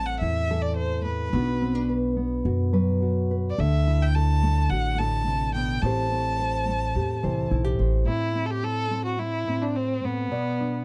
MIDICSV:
0, 0, Header, 1, 4, 480
1, 0, Start_track
1, 0, Tempo, 561798
1, 1139, Time_signature, 4, 2, 24, 8
1, 9267, End_track
2, 0, Start_track
2, 0, Title_t, "Violin"
2, 0, Program_c, 0, 40
2, 49, Note_on_c, 0, 78, 67
2, 165, Note_off_c, 0, 78, 0
2, 170, Note_on_c, 0, 76, 68
2, 529, Note_on_c, 0, 74, 61
2, 542, Note_off_c, 0, 76, 0
2, 644, Note_off_c, 0, 74, 0
2, 649, Note_on_c, 0, 72, 68
2, 877, Note_off_c, 0, 72, 0
2, 898, Note_on_c, 0, 71, 51
2, 1583, Note_off_c, 0, 71, 0
2, 2993, Note_on_c, 0, 74, 56
2, 3074, Note_on_c, 0, 76, 75
2, 3087, Note_off_c, 0, 74, 0
2, 3440, Note_on_c, 0, 79, 68
2, 3453, Note_off_c, 0, 76, 0
2, 3544, Note_on_c, 0, 81, 80
2, 3557, Note_off_c, 0, 79, 0
2, 4018, Note_on_c, 0, 78, 80
2, 4031, Note_off_c, 0, 81, 0
2, 4258, Note_on_c, 0, 81, 80
2, 4271, Note_off_c, 0, 78, 0
2, 4733, Note_off_c, 0, 81, 0
2, 4739, Note_on_c, 0, 79, 72
2, 4972, Note_on_c, 0, 81, 78
2, 4985, Note_off_c, 0, 79, 0
2, 6415, Note_off_c, 0, 81, 0
2, 6895, Note_on_c, 0, 64, 71
2, 7229, Note_on_c, 0, 69, 43
2, 7242, Note_off_c, 0, 64, 0
2, 7268, Note_on_c, 0, 67, 64
2, 7281, Note_off_c, 0, 69, 0
2, 7379, Note_on_c, 0, 69, 76
2, 7392, Note_off_c, 0, 67, 0
2, 7728, Note_off_c, 0, 69, 0
2, 7733, Note_on_c, 0, 66, 59
2, 7852, Note_on_c, 0, 64, 69
2, 7864, Note_off_c, 0, 66, 0
2, 8214, Note_on_c, 0, 62, 57
2, 8227, Note_off_c, 0, 64, 0
2, 8339, Note_on_c, 0, 60, 61
2, 8352, Note_off_c, 0, 62, 0
2, 8580, Note_on_c, 0, 59, 57
2, 8593, Note_off_c, 0, 60, 0
2, 9267, Note_off_c, 0, 59, 0
2, 9267, End_track
3, 0, Start_track
3, 0, Title_t, "Nylon-string guitar"
3, 0, Program_c, 1, 24
3, 0, Note_on_c, 1, 45, 51
3, 0, Note_on_c, 1, 57, 41
3, 0, Note_on_c, 1, 60, 42
3, 0, Note_on_c, 1, 69, 42
3, 189, Note_on_c, 1, 64, 40
3, 424, Note_off_c, 1, 69, 0
3, 427, Note_on_c, 1, 52, 44
3, 435, Note_on_c, 1, 69, 50
3, 883, Note_off_c, 1, 45, 0
3, 893, Note_on_c, 1, 45, 40
3, 1113, Note_off_c, 1, 52, 0
3, 1114, Note_off_c, 1, 57, 0
3, 1132, Note_off_c, 1, 45, 0
3, 1136, Note_on_c, 1, 47, 54
3, 1143, Note_off_c, 1, 60, 0
3, 1143, Note_off_c, 1, 64, 0
3, 1143, Note_on_c, 1, 59, 49
3, 1146, Note_off_c, 1, 69, 0
3, 1146, Note_on_c, 1, 62, 47
3, 1154, Note_on_c, 1, 66, 49
3, 1379, Note_off_c, 1, 62, 0
3, 1382, Note_on_c, 1, 60, 42
3, 1494, Note_off_c, 1, 60, 0
3, 1494, Note_on_c, 1, 62, 36
3, 1616, Note_on_c, 1, 71, 46
3, 1839, Note_off_c, 1, 59, 0
3, 1849, Note_on_c, 1, 59, 43
3, 2093, Note_off_c, 1, 66, 0
3, 2096, Note_on_c, 1, 66, 41
3, 2326, Note_off_c, 1, 71, 0
3, 2331, Note_on_c, 1, 54, 50
3, 2336, Note_on_c, 1, 71, 50
3, 2571, Note_off_c, 1, 66, 0
3, 2581, Note_on_c, 1, 66, 46
3, 2816, Note_off_c, 1, 71, 0
3, 2827, Note_on_c, 1, 71, 48
3, 3024, Note_off_c, 1, 59, 0
3, 3025, Note_off_c, 1, 54, 0
3, 3027, Note_off_c, 1, 47, 0
3, 3030, Note_off_c, 1, 66, 0
3, 3033, Note_off_c, 1, 71, 0
3, 3054, Note_off_c, 1, 62, 0
3, 3060, Note_on_c, 1, 50, 57
3, 3064, Note_on_c, 1, 69, 49
3, 3310, Note_on_c, 1, 64, 52
3, 3550, Note_off_c, 1, 69, 0
3, 3553, Note_on_c, 1, 69, 49
3, 3784, Note_on_c, 1, 57, 51
3, 4032, Note_on_c, 1, 66, 45
3, 4265, Note_on_c, 1, 45, 48
3, 4268, Note_off_c, 1, 69, 0
3, 4271, Note_on_c, 1, 69, 53
3, 4501, Note_off_c, 1, 45, 0
3, 4505, Note_on_c, 1, 48, 52
3, 4741, Note_off_c, 1, 48, 0
3, 4745, Note_on_c, 1, 47, 46
3, 4955, Note_off_c, 1, 66, 0
3, 4977, Note_off_c, 1, 47, 0
3, 4978, Note_off_c, 1, 50, 0
3, 4980, Note_on_c, 1, 45, 55
3, 4983, Note_off_c, 1, 57, 0
3, 4987, Note_on_c, 1, 57, 46
3, 4990, Note_off_c, 1, 64, 0
3, 4993, Note_on_c, 1, 60, 47
3, 5000, Note_on_c, 1, 67, 48
3, 5002, Note_off_c, 1, 69, 0
3, 5006, Note_on_c, 1, 72, 50
3, 5218, Note_off_c, 1, 60, 0
3, 5228, Note_on_c, 1, 60, 48
3, 5451, Note_off_c, 1, 72, 0
3, 5462, Note_on_c, 1, 72, 48
3, 5696, Note_off_c, 1, 57, 0
3, 5706, Note_on_c, 1, 57, 46
3, 5935, Note_off_c, 1, 67, 0
3, 5946, Note_on_c, 1, 67, 45
3, 6176, Note_off_c, 1, 72, 0
3, 6179, Note_on_c, 1, 52, 45
3, 6186, Note_on_c, 1, 72, 53
3, 6412, Note_off_c, 1, 67, 0
3, 6416, Note_on_c, 1, 64, 50
3, 6531, Note_off_c, 1, 64, 0
3, 6531, Note_on_c, 1, 67, 40
3, 6649, Note_off_c, 1, 72, 0
3, 6659, Note_on_c, 1, 72, 47
3, 6870, Note_off_c, 1, 52, 0
3, 6870, Note_off_c, 1, 72, 0
3, 6873, Note_off_c, 1, 57, 0
3, 6883, Note_off_c, 1, 45, 0
3, 6886, Note_off_c, 1, 60, 0
3, 6892, Note_on_c, 1, 45, 49
3, 6894, Note_off_c, 1, 67, 0
3, 6899, Note_on_c, 1, 60, 45
3, 7127, Note_off_c, 1, 60, 0
3, 7138, Note_on_c, 1, 60, 41
3, 7374, Note_on_c, 1, 64, 40
3, 7602, Note_off_c, 1, 60, 0
3, 7612, Note_on_c, 1, 60, 46
3, 7848, Note_off_c, 1, 60, 0
3, 7858, Note_on_c, 1, 60, 37
3, 8084, Note_off_c, 1, 45, 0
3, 8090, Note_off_c, 1, 60, 0
3, 8094, Note_on_c, 1, 45, 41
3, 8101, Note_on_c, 1, 60, 41
3, 8567, Note_off_c, 1, 45, 0
3, 8577, Note_on_c, 1, 45, 39
3, 8788, Note_off_c, 1, 64, 0
3, 8791, Note_off_c, 1, 60, 0
3, 8807, Note_off_c, 1, 45, 0
3, 8810, Note_on_c, 1, 47, 55
3, 8815, Note_on_c, 1, 74, 44
3, 9059, Note_on_c, 1, 62, 45
3, 9267, Note_off_c, 1, 47, 0
3, 9267, Note_off_c, 1, 62, 0
3, 9267, Note_off_c, 1, 74, 0
3, 9267, End_track
4, 0, Start_track
4, 0, Title_t, "Upright bass"
4, 0, Program_c, 2, 32
4, 0, Note_on_c, 2, 33, 71
4, 150, Note_off_c, 2, 33, 0
4, 184, Note_on_c, 2, 40, 60
4, 1106, Note_off_c, 2, 40, 0
4, 1137, Note_on_c, 2, 35, 78
4, 2062, Note_off_c, 2, 35, 0
4, 2094, Note_on_c, 2, 42, 67
4, 3021, Note_off_c, 2, 42, 0
4, 3062, Note_on_c, 2, 38, 76
4, 3985, Note_off_c, 2, 38, 0
4, 4011, Note_on_c, 2, 33, 62
4, 4940, Note_off_c, 2, 33, 0
4, 4976, Note_on_c, 2, 33, 81
4, 5903, Note_off_c, 2, 33, 0
4, 5940, Note_on_c, 2, 40, 57
4, 6167, Note_off_c, 2, 40, 0
4, 6184, Note_on_c, 2, 36, 54
4, 6397, Note_off_c, 2, 36, 0
4, 6419, Note_on_c, 2, 35, 60
4, 6634, Note_off_c, 2, 35, 0
4, 6656, Note_on_c, 2, 33, 62
4, 6873, Note_off_c, 2, 33, 0
4, 9267, End_track
0, 0, End_of_file